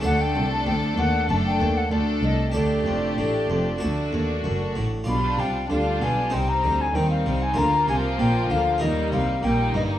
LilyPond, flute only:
\new Staff \with { instrumentName = "Flute" } { \time 4/4 \key d \phrygian \tempo 4 = 96 fis''16 g''8 a''16 g''8 fis''8 a''16 g''8 fis''16 d''8 ees''8 | d''2.~ d''8 r8 | \key c \minor b''8 g''8 f''8 aes''8 g''16 bes''8 aes''16 g''16 f''8 aes''16 | bes''8 aes''8 g''8 f''8 ees''8 f''8 g''8 ees''8 | }